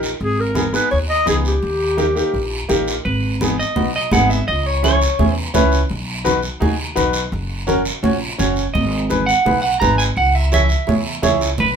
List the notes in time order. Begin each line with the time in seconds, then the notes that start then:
Already playing: A#1
0.03 short guiro
0.20 G#1 G#4, high conga, long guiro
0.40 A#4
0.55 B3 D#4 G#4, high conga, short guiro
0.73 B3 D#4 G#4 B4, short guiro
0.91 D#2 C#5, high conga, long guiro
1.10 D#5
1.26 C#2 B3 D#4 G#4, high conga, short guiro
1.45 G4, short guiro
1.62 D#2, high conga, long guiro
1.97 A#3 D#4 G4, high conga, short guiro
2.15 A#3 D#4 G4, short guiro
2.34 A#1, high conga, long guiro
2.69 A#1 A#3 D#4 G4, high conga, short guiro
2.88 short guiro
3.05 G#1 B4, high conga, long guiro
3.41 B3 D#4 G#4, high conga, short guiro
3.59 D#5, short guiro
3.76 B1 B3 D#4 F#4, high conga, low conga, long guiro
3.96 D#5
4.11 G#1 B3 D#4 G#4 F#5, high conga, low conga, short guiro
4.30 E5, short guiro
4.48 C#2 D#5, high conga, long guiro
4.66 C#5
4.83 C#4 E4 G#4 C#5, high conga, short guiro
5.01 short guiro
5.19 E2 C#4 E4 G#4, high conga, low conga, long guiro
5.34 B4
5.54 C#2 C#4 E4 B4, high conga, low conga, short guiro
5.72 short guiro
5.90 B1, high conga, long guiro
6.24 D#4 F#4 B4, high conga, short guiro
6.43 short guiro
6.60 D#2 D#4 F#4 G#4, high conga, low conga, long guiro
6.95 B1 D#4 F#4 B4, high conga, short guiro
7.13 short guiro
7.32 F#1, high conga, long guiro
7.67 C#4 F#4 A#4, high conga, short guiro
7.85 short guiro
8.03 A#1 C#4 F#4 C#5, high conga, low conga, long guiro
8.38 F#1 C#4 F#4 C#5, high conga, short guiro
8.56 short guiro
8.74 G#1 D#5, high conga, low conga, long guiro
9.09 D#4 G#4 B4, high conga, short guiro
9.26 F#5, short guiro
9.45 B1 D#4 G#4 B4, high conga, low conga, long guiro
9.62 F#5
9.80 G#1 D#4 G#4 B4 A#5, high conga, low conga, short guiro
9.98 G#5, short guiro
10.17 C#2 F#5, high conga, long guiro
10.35 E5
10.52 E4 G#4 C#5 E5, high conga, short guiro
10.69 short guiro
10.87 E2 E4 G#4 C#5, high conga, low conga, long guiro
11.22 C#2 E4 G#4 C#5, high conga, low conga, short guiro
11.41 short guiro
11.58 B1 B4, high conga, low conga, long guiro